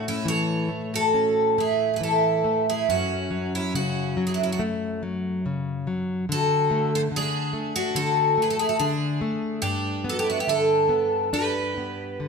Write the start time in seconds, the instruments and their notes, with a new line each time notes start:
Already playing: nylon-string guitar A2 A3
0.08 twelve-string acoustic guitar C#4 E4
0.25 nylon-string guitar E3, twelve-string acoustic guitar C#5
0.30 twelve-string acoustic guitar A4
0.69 nylon-string guitar A3
0.94 twelve-string acoustic guitar F#4 A4
1.14 nylon-string guitar C#4
1.58 nylon-string guitar A3, twelve-string acoustic guitar E4 G#4
1.94 twelve-string acoustic guitar G#4 B4
2.01 nylon-string guitar E3, twelve-string acoustic guitar A4
2.05 twelve-string acoustic guitar E4
2.44 nylon-string guitar A3
2.69 twelve-string acoustic guitar E4 G#4
2.89 nylon-string guitar F#2, twelve-string acoustic guitar C#4 F#4
3.31 nylon-string guitar F#3
3.55 twelve-string acoustic guitar C#4 E4
3.74 nylon-string guitar C#3, twelve-string acoustic guitar F#4
3.79 twelve-string acoustic guitar C#4
4.17 nylon-string guitar F#3
4.27 twelve-string acoustic guitar E4 G#4
4.34 twelve-string acoustic guitar D4 F#4
4.43 twelve-string acoustic guitar C#4 E4
4.52 twelve-string acoustic guitar D4 F#4
4.59 nylon-string guitar A3
5.03 nylon-string guitar F#3
5.46 nylon-string guitar C#3
5.87 nylon-string guitar F#3
6.29 nylon-string guitar D3, twelve-string acoustic guitar A4
6.34 twelve-string acoustic guitar F#4
6.71 nylon-string guitar A3
6.95 twelve-string acoustic guitar A4 C5
7.12 nylon-string guitar D3
7.16 twelve-string acoustic guitar D4 G#4
7.53 nylon-string guitar A3
7.76 twelve-string acoustic guitar D4 F#4
7.95 nylon-string guitar D3, twelve-string acoustic guitar F#4 A4
8.38 nylon-string guitar A3
8.42 twelve-string acoustic guitar G#4 B4
8.50 twelve-string acoustic guitar F#4 A4
8.59 twelve-string acoustic guitar E4 G#4
8.69 twelve-string acoustic guitar F#4 A4
8.79 nylon-string guitar D3, twelve-string acoustic guitar D4 G#4
9.21 nylon-string guitar A3
9.62 nylon-string guitar G2, twelve-string acoustic guitar D4 G4
10.04 nylon-string guitar B3
10.09 twelve-string acoustic guitar F#4 A4
10.19 twelve-string acoustic guitar E4 G4
10.30 twelve-string acoustic guitar D4 F#4
10.39 twelve-string acoustic guitar E4 G4
10.47 nylon-string guitar D3, twelve-string acoustic guitar D4 A4
10.89 nylon-string guitar B3
11.33 nylon-string guitar D4, twelve-string acoustic guitar G4 B4
11.78 nylon-string guitar B3
12.20 nylon-string guitar D3